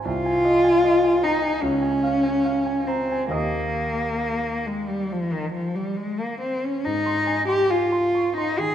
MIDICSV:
0, 0, Header, 1, 3, 480
1, 0, Start_track
1, 0, Key_signature, -4, "major"
1, 0, Tempo, 778210
1, 40, Time_signature, 4, 2, 24, 8
1, 1000, Tempo, 825309
1, 1480, Tempo, 894188
1, 2440, Tempo, 867052
1, 4938, End_track
2, 0, Start_track
2, 0, Title_t, "Grand piano"
2, 0, Program_c, 0, 0
2, 0, Control_c, 0, 64, 127
2, 32, Note_on_c, 0, 36, 39
2, 52, Control_c, 0, 64, 0
2, 158, Note_on_c, 0, 80, 30
2, 165, Control_c, 0, 64, 127
2, 277, Note_on_c, 0, 75, 34
2, 350, Note_off_c, 0, 80, 0
2, 396, Note_on_c, 0, 80, 31
2, 469, Note_off_c, 0, 75, 0
2, 521, Note_on_c, 0, 75, 38
2, 589, Note_off_c, 0, 80, 0
2, 640, Note_on_c, 0, 80, 33
2, 712, Note_off_c, 0, 75, 0
2, 759, Note_on_c, 0, 82, 28
2, 832, Note_off_c, 0, 80, 0
2, 875, Note_on_c, 0, 80, 29
2, 879, Note_off_c, 0, 82, 0
2, 972, Note_off_c, 0, 36, 0
2, 999, Note_off_c, 0, 80, 0
2, 999, Note_on_c, 0, 37, 41
2, 1010, Control_c, 0, 64, 0
2, 1094, Control_c, 0, 64, 127
2, 1116, Note_on_c, 0, 80, 34
2, 1238, Note_on_c, 0, 77, 35
2, 1307, Note_off_c, 0, 80, 0
2, 1355, Note_on_c, 0, 80, 30
2, 1432, Note_off_c, 0, 77, 0
2, 1480, Note_on_c, 0, 77, 38
2, 1550, Note_off_c, 0, 80, 0
2, 1595, Note_on_c, 0, 80, 30
2, 1669, Note_off_c, 0, 77, 0
2, 1712, Note_on_c, 0, 82, 26
2, 1789, Note_off_c, 0, 80, 0
2, 1836, Note_off_c, 0, 82, 0
2, 1841, Note_on_c, 0, 80, 29
2, 1929, Note_on_c, 0, 39, 38
2, 1936, Note_on_c, 0, 67, 26
2, 1939, Note_off_c, 0, 37, 0
2, 1941, Note_on_c, 0, 75, 27
2, 1947, Note_on_c, 0, 87, 25
2, 1962, Note_off_c, 0, 80, 0
2, 1972, Control_c, 0, 64, 0
2, 2075, Control_c, 0, 64, 127
2, 3842, Note_off_c, 0, 39, 0
2, 3846, Note_off_c, 0, 67, 0
2, 3848, Note_off_c, 0, 75, 0
2, 3852, Note_off_c, 0, 87, 0
2, 3892, Control_c, 0, 64, 0
2, 3892, Note_on_c, 0, 44, 35
2, 3975, Control_c, 0, 64, 127
2, 4004, Note_on_c, 0, 84, 29
2, 4119, Note_on_c, 0, 80, 31
2, 4189, Note_off_c, 0, 84, 0
2, 4240, Note_on_c, 0, 84, 27
2, 4306, Note_off_c, 0, 80, 0
2, 4359, Note_on_c, 0, 80, 31
2, 4427, Note_off_c, 0, 84, 0
2, 4481, Note_on_c, 0, 84, 32
2, 4551, Note_off_c, 0, 80, 0
2, 4606, Note_on_c, 0, 85, 26
2, 4678, Note_off_c, 0, 84, 0
2, 4728, Note_off_c, 0, 85, 0
2, 4734, Note_on_c, 0, 84, 28
2, 4828, Note_off_c, 0, 44, 0
2, 4850, Note_on_c, 0, 51, 29
2, 4920, Note_off_c, 0, 84, 0
2, 4938, Note_off_c, 0, 51, 0
2, 4938, End_track
3, 0, Start_track
3, 0, Title_t, "Cello"
3, 0, Program_c, 1, 42
3, 44, Note_on_c, 1, 65, 70
3, 765, Note_on_c, 1, 63, 51
3, 775, Note_off_c, 1, 65, 0
3, 1002, Note_on_c, 1, 61, 57
3, 1010, Note_off_c, 1, 63, 0
3, 1707, Note_on_c, 1, 60, 44
3, 1715, Note_off_c, 1, 61, 0
3, 1952, Note_off_c, 1, 60, 0
3, 1955, Note_on_c, 1, 58, 55
3, 2680, Note_on_c, 1, 56, 44
3, 2688, Note_off_c, 1, 58, 0
3, 2804, Note_on_c, 1, 55, 47
3, 2812, Note_off_c, 1, 56, 0
3, 2930, Note_on_c, 1, 53, 45
3, 2938, Note_off_c, 1, 55, 0
3, 3045, Note_on_c, 1, 51, 43
3, 3053, Note_off_c, 1, 53, 0
3, 3155, Note_off_c, 1, 51, 0
3, 3159, Note_on_c, 1, 53, 45
3, 3279, Note_on_c, 1, 55, 40
3, 3287, Note_off_c, 1, 53, 0
3, 3398, Note_on_c, 1, 56, 45
3, 3407, Note_off_c, 1, 55, 0
3, 3524, Note_on_c, 1, 58, 41
3, 3533, Note_off_c, 1, 56, 0
3, 3644, Note_off_c, 1, 58, 0
3, 3647, Note_on_c, 1, 60, 42
3, 3775, Note_on_c, 1, 61, 41
3, 3783, Note_off_c, 1, 60, 0
3, 3887, Note_on_c, 1, 63, 56
3, 3895, Note_off_c, 1, 61, 0
3, 4236, Note_off_c, 1, 63, 0
3, 4242, Note_on_c, 1, 67, 56
3, 4361, Note_on_c, 1, 65, 48
3, 4369, Note_off_c, 1, 67, 0
3, 4728, Note_off_c, 1, 65, 0
3, 4732, Note_on_c, 1, 63, 51
3, 4851, Note_on_c, 1, 68, 56
3, 4860, Note_off_c, 1, 63, 0
3, 4938, Note_off_c, 1, 68, 0
3, 4938, End_track
0, 0, End_of_file